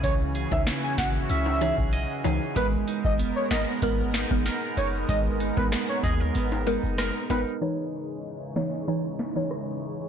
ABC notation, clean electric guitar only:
X:1
M:4/4
L:1/16
Q:1/4=95
K:C#dor
V:1 name="Clean electric guitar"
[C,CEGd]2 G2 E4 C2 G2 d2 G2 | G,2 D2 B,2 A2 B,2 D2 A2 D2 | G,2 D2 B,2 G A B,2 D2 A2 D2 | z16 |]